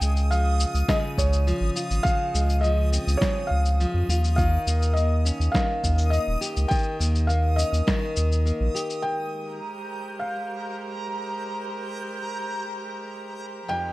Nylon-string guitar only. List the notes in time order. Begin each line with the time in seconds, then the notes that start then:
Already playing: C#3 C4
0.02 G#3
0.31 F3
0.88 C#3
1.47 F3
1.76 F4
2.04 C#3
2.34 G#3
2.63 F3
2.92 C4
3.21 C#3
3.80 F3
4.09 F4
4.38 D#3
4.67 A#3
4.96 A#3
5.25 C#4
5.54 D#3
6.12 A#3
6.41 G4
6.70 D#3
6.99 A#3
7.29 A#3
7.58 C#4
7.87 D#3
8.45 A#3
8.75 G4
13.68 F2